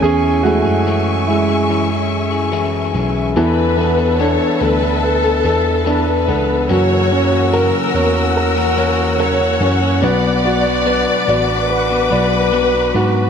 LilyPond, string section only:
\new Staff \with { instrumentName = "String section" } { \time 4/4 \key e \mixolydian \tempo 4 = 72 << { <gis'' cis'''>1 | <a' a''>1 | <ais' e'''>1 | <b' d'''>1 | } \\ { e''1 | e''1 | fis''1~ | fis''1 | } >> }